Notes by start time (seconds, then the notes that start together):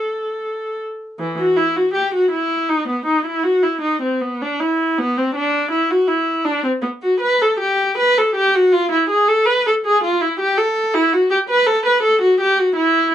Already playing: A4
1.19 E3
1.39 F#4
1.57 E4
1.76 F#4
1.94 G4
2.14 F#4
2.32 E4
2.69 D#4
2.89 B3
3.06 D#4
3.26 E4
3.44 F#4
3.63 E4
3.82 D#4
4.02 C4
4.21 B3
4.42 D4
4.60 E4
4.99 B3
5.17 C4
5.35 D4
5.72 E4
5.90 F#4
6.08 E4
6.45 D4
6.64 C4
6.82 B3
7.02 F#4
7.21 B4
7.42 A4
7.60 G4
7.98 B4
8.18 A4
8.35 G4
8.55 F#4
8.73 F4
8.92 E4
9.10 G#4
9.28 A4
9.46 B4
9.67 A4
9.86 G#4
10.04 F4
10.21 E4
10.40 G4
10.58 A4
10.94 E4
11.13 F#4
11.31 G4
11.50 B4
11.67 A4
11.86 B4
12.03 A4
12.22 F#4
12.41 G4
12.59 F#4
12.76 E4